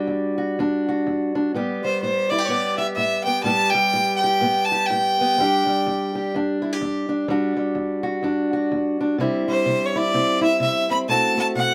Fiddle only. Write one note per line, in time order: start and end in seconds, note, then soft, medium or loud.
1.84 2.01 C5 medium
2.02 2.31 C5 medium
2.30 2.45 D5 medium
2.45 2.48 C#5 medium
2.45 2.77 D5 medium
2.78 2.87 E5 medium
2.95 3.23 E5 medium
3.24 3.43 G5 medium
3.44 3.71 A5 loud
3.70 4.16 G5 loud
4.17 4.66 G5 medium
4.65 4.87 A5 loud
4.86 6.31 G5 medium
9.49 9.88 C5 medium
9.86 9.99 C#5 medium
9.97 10.42 D5 medium
10.43 10.60 E5 medium
10.62 10.87 E5 medium
10.91 10.98 B5 medium
11.09 11.35 A5 loud
11.39 11.47 A5 medium
11.56 11.74 F#5 medium